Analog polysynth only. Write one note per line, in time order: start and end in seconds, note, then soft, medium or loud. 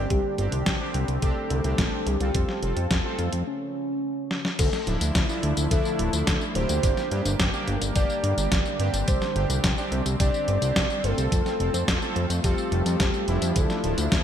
0.00 0.35 C4 medium
0.00 0.35 D4 medium
0.00 0.35 G4 medium
0.38 0.77 C4 medium
0.38 0.77 D4 medium
0.38 0.77 G4 medium
0.80 1.06 C4 medium
0.80 1.06 D4 medium
0.80 1.06 G4 loud
1.23 1.61 C4 loud
1.23 1.61 D4 medium
1.23 1.61 G4 loud
1.65 2.17 C4 medium
1.65 2.17 D4 medium
1.65 2.17 G4 loud
2.21 2.59 C4 medium
2.21 2.59 F4 medium
2.21 2.59 A4 medium
2.63 3.01 C4 medium
2.63 3.01 F4 medium
2.63 3.01 A4 medium
3.05 3.31 C4 medium
3.05 3.31 F4 medium
3.05 3.31 A4 loud
4.87 5.26 F3 medium
4.87 5.26 D4 medium
4.87 5.26 E4 medium
5.29 5.55 F3 medium
5.29 5.55 D4 medium
5.29 5.55 E4 loud
5.71 6.10 F3 loud
5.71 6.10 D4 medium
5.71 6.10 E4 loud
6.13 6.52 F3 medium
6.13 6.52 D4 medium
6.13 6.52 E4 medium
6.55 7.08 A#3 loud
6.55 7.08 D4 medium
6.55 7.08 G4 loud
7.11 7.50 A#3 medium
7.11 7.50 D4 medium
7.11 7.50 G4 medium
7.53 7.79 A#3 loud
7.53 7.79 D4 medium
7.53 7.79 G4 loud
7.95 8.34 A#3 loud
7.95 8.34 D4 medium
7.95 8.34 G4 loud
8.38 8.76 A#3 medium
8.38 8.76 D4 medium
8.38 8.76 G4 medium
8.80 9.32 C4 loud
8.80 9.32 D4 medium
8.80 9.32 G4 loud
9.36 9.74 C4 medium
9.36 9.74 D4 medium
9.36 9.74 G4 medium
9.78 10.04 C4 loud
9.78 10.04 D4 medium
9.78 10.04 G4 loud
10.20 10.59 C4 loud
10.20 10.59 D4 medium
10.20 10.59 G4 loud
10.62 11.01 C4 medium
10.62 11.01 D4 medium
10.62 11.00 G4 medium
11.04 11.57 C4 loud
11.04 11.57 F4 medium
11.04 11.57 A4 loud
11.60 11.99 C4 medium
11.60 11.99 F4 medium
11.60 11.99 A4 medium
12.02 12.28 C4 medium
12.02 12.28 F4 medium
12.02 12.28 A4 loud
12.44 12.83 C4 loud
12.44 12.83 F4 medium
12.44 12.83 A4 loud
12.86 13.25 C4 medium
12.86 13.25 F4 medium
12.86 13.25 A4 medium
13.28 13.81 F3 loud
13.28 13.81 D4 medium
13.28 13.81 E4 loud
13.84 14.23 F3 medium
13.84 14.23 D4 medium
13.84 14.23 E4 medium